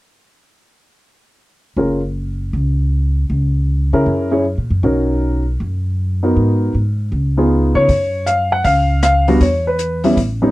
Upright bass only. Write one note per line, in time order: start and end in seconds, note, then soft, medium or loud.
1.76 2.50 F#1 medium
2.53 3.26 C#2 medium
3.30 3.89 C#2 medium
3.93 4.06 C#3 medium
4.06 4.54 F#2 medium
4.58 4.70 A#2 soft
4.70 4.82 F#2 medium
4.83 5.56 B1 medium
5.60 6.32 F#2 medium
6.36 6.72 G#2 medium
6.75 7.10 G#2 medium
7.12 7.71 C#2 medium
7.75 7.87 C#3 medium
7.89 8.61 F#2 medium
8.64 9.37 C#2 medium
9.41 10.13 E2 medium
10.17 10.51 A1 medium